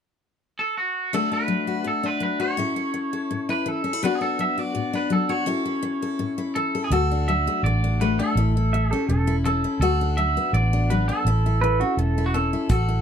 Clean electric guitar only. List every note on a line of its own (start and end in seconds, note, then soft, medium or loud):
0.59 0.77 A4 medium
0.77 1.11 F#4 medium
1.14 1.32 A4 medium
1.33 1.87 B4 medium
1.88 2.06 A4 medium
2.06 2.22 B4 medium
2.23 2.40 B4 medium
2.41 3.52 C#5 medium
3.50 3.68 B4 medium
3.68 4.03 A4 medium
4.04 4.15 B4 medium
4.15 4.20 G#4 medium
4.22 4.40 A4 medium
4.41 4.59 E5 loud
4.59 4.94 D5 medium
4.95 5.11 B4 medium
5.13 5.30 A4 medium
5.30 6.52 C#5 medium
6.55 6.83 A4 medium
6.84 6.92 G#4 medium
6.92 7.29 A4 medium
7.28 7.63 E5 medium
7.64 8.01 D5 medium
8.01 8.19 B4 medium
8.19 8.91 A4 medium
8.91 9.23 G4 medium
9.46 9.79 A4 medium
9.81 10.18 A4 medium
10.17 10.54 E5 loud
10.54 10.91 D5 medium
10.90 11.08 B4 medium
11.08 12.12 A4 medium
12.26 12.33 F#4 medium
12.34 12.67 A4 medium
12.71 13.02 A4 medium